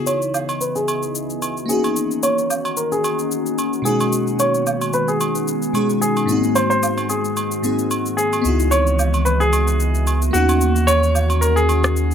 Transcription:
Already playing: C#2 C#3 E3 B3 D#4 E4 F#4 D#5
0.06 C#5, high agogo, shaker
0.22 shaker
0.34 low woodblock, shaker
0.49 high agogo, shaker
0.61 B4, shaker
0.75 G#4, shaker
0.88 high agogo, shaker
1.03 shaker
1.15 shaker
1.30 shaker
1.42 high agogo, shaker
1.57 shaker
1.66 D#3 A#3 C#4 G#4, shaker
1.70 D#4 F#4
1.84 high agogo, shaker
1.96 shaker
2.11 shaker
2.23 C#5, high agogo, shaker
2.38 shaker
2.50 low woodblock, shaker
2.65 high agogo, shaker
2.77 A#4, shaker
2.92 G#4, shaker
3.04 high agogo, shaker
3.19 shaker
3.31 shaker
3.46 shaker
3.58 high agogo, shaker
3.73 shaker
3.82 B2 G#3 B3 C#4 G#4, shaker
3.87 D#4 F#4
4.00 high agogo, shaker
4.12 shaker
4.27 shaker
4.39 C#5, high agogo, shaker
4.54 shaker
4.66 low woodblock, shaker
4.81 high agogo, shaker
4.93 B4, shaker
5.08 G#4, shaker
5.20 high agogo, shaker
5.35 shaker
5.48 shaker
5.62 shaker
5.73 B2 G#3 C#4 D#4 G#4, high agogo, shaker
5.90 shaker
6.01 G#4, shaker
6.16 high agogo, shaker
6.26 G#2 A#3 C4, shaker
6.31 D#4 F#4
6.44 shaker
6.55 C5, high agogo, shaker
6.70 C5, shaker
6.83 low woodblock, shaker
6.98 high agogo, shaker
7.09 G#4, shaker
7.24 shaker
7.37 high agogo, shaker
7.51 shaker
7.62 G#2 A#3 C4 D#4 G#4, shaker
7.79 shaker
7.91 high agogo, shaker
8.06 shaker
8.17 G#4, shaker
8.33 high agogo, shaker
8.42 C#2 E3 B3 D#4 F#4 D#5, shaker
8.46 E4 F#4
8.60 shaker
8.71 C#5, high agogo, shaker
8.87 shaker
8.99 low woodblock, shaker
9.14 high agogo, shaker
9.25 B4, shaker
9.40 G#4, shaker
9.53 high agogo, shaker
9.67 shaker
9.80 shaker
9.95 shaker
10.07 high agogo, shaker
10.22 shaker
10.31 D#2 D#3 A#3 C#4 F#4, shaker
10.36 D#4 F#4
10.49 high agogo, shaker
10.61 shaker
10.76 shaker
10.87 C#5, high agogo, shaker
11.03 shaker
11.15 low woodblock, shaker
11.30 high agogo, shaker
11.41 A#4, shaker
11.56 G#4, shaker
11.69 high agogo, shaker
11.84 cross-stick, shaker
11.96 shaker
12.11 shaker

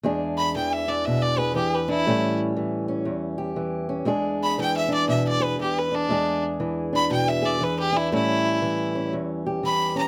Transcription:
0.03 E2 G#3 D4 G#4
0.38 B5
0.56 E3 G5
0.73 E5
0.88 D4 D5
1.05 B2 E5
1.22 D5
1.38 G#4 B4
1.56 E3 G4
1.74 B4
1.88 D4 E4
2.07 A2 G3 C#4
2.57 E3
2.88 C#4
3.05 E2
3.38 G4
3.56 E3
3.89 C#4
4.05 E2 G#3 D4 G#4
4.43 B5
4.58 E3 G5
4.77 E5
4.88 D4
4.94 D5
5.08 B2 E5
5.28 D5
5.40 G#4 B4
5.59 E3 G4
5.79 B4
5.92 D4
6.09 E2 G#3 D4 G#4
6.60 E3
6.93 D4 B5
7.10 B2 G5
7.28 E5
7.42 G#4 D5
7.61 E3 B4
7.79 G4
7.92 D4
7.97 E4
8.12 A2 G3 C#4 E4
8.62 E3
8.95 C#4
9.13 E2
9.46 G4
9.63 E3 B5
9.96 C#4 A#5

